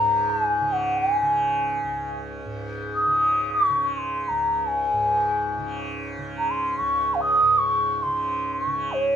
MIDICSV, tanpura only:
0, 0, Header, 1, 2, 480
1, 0, Start_track
1, 0, Tempo, 500000
1, 8793, End_track
2, 0, Start_track
2, 0, Title_t, "Tanpura"
2, 0, Program_c, 0, 104
2, 0, Note_on_c, 0, 37, 57
2, 0, Note_on_c, 0, 44, 61
2, 0, Note_on_c, 0, 49, 59
2, 587, Note_off_c, 0, 49, 0
2, 587, Note_on_c, 0, 49, 61
2, 1176, Note_off_c, 0, 49, 0
2, 1176, Note_on_c, 0, 49, 59
2, 1759, Note_off_c, 0, 37, 0
2, 1762, Note_on_c, 0, 37, 59
2, 2352, Note_off_c, 0, 44, 0
2, 2356, Note_on_c, 0, 44, 48
2, 2944, Note_off_c, 0, 49, 0
2, 2944, Note_on_c, 0, 49, 56
2, 3549, Note_off_c, 0, 49, 0
2, 3549, Note_on_c, 0, 49, 57
2, 4125, Note_off_c, 0, 37, 0
2, 4129, Note_on_c, 0, 37, 61
2, 4726, Note_off_c, 0, 44, 0
2, 4730, Note_on_c, 0, 44, 53
2, 5359, Note_off_c, 0, 49, 0
2, 5359, Note_on_c, 0, 49, 63
2, 5933, Note_off_c, 0, 49, 0
2, 5933, Note_on_c, 0, 49, 59
2, 6528, Note_off_c, 0, 37, 0
2, 6532, Note_on_c, 0, 37, 60
2, 7124, Note_off_c, 0, 44, 0
2, 7128, Note_on_c, 0, 44, 54
2, 7735, Note_off_c, 0, 49, 0
2, 7735, Note_on_c, 0, 49, 59
2, 8321, Note_off_c, 0, 49, 0
2, 8321, Note_on_c, 0, 49, 64
2, 8793, Note_off_c, 0, 37, 0
2, 8793, Note_off_c, 0, 44, 0
2, 8793, Note_off_c, 0, 49, 0
2, 8793, End_track
0, 0, End_of_file